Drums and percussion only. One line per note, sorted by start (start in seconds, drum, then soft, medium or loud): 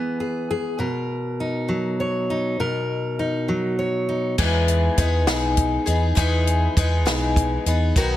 4.38 kick soft
4.38 crash medium
4.68 closed hi-hat soft
4.98 kick soft
4.98 closed hi-hat medium
5.27 snare medium
5.27 closed hi-hat medium
5.57 kick soft
5.57 closed hi-hat medium
5.87 closed hi-hat medium
6.17 kick soft
6.17 closed hi-hat medium
6.47 closed hi-hat soft
6.77 kick medium
6.77 closed hi-hat soft
7.07 snare loud
7.07 closed hi-hat medium
7.36 kick medium
7.36 closed hi-hat medium
7.66 closed hi-hat medium
7.96 kick medium
7.96 closed hi-hat medium